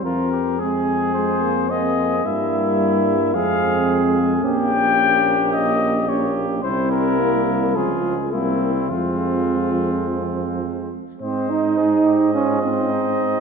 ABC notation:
X:1
M:4/4
L:1/8
Q:1/4=108
K:Fm
V:1 name="Trumpet"
B2 A2 c2 e2 | =e4 f3 z | g4 e2 d z | c B3 A2 =E2 |
F6- F z | [K:Ab] c2 A G F2 E2 |]
V:2 name="Flugelhorn"
F G A4 A2 | =E4 A4 | G6 G2 | =E4 F2 C2 |
C6- C z | [K:Ab] e8 |]
V:3 name="French horn"
C2 C4 B,2 | B,4 C4 | D6 D2 | C2 B,2 A,2 B,2 |
A,6- A, z | [K:Ab] c8 |]
V:4 name="Trombone" clef=bass
F, z A,2 A, B, C2 | G,4 A,4 | B,6 B,2 | G,4 F,2 G,2 |
F,6- F, z | [K:Ab] C E3 D C3 |]
V:5 name="Tuba" clef=bass
F,,8 | G,,4 F,,4 | B,,,8 | C,,4 D,,2 C,,2 |
F,,6- F,, z | [K:Ab] A,,8 |]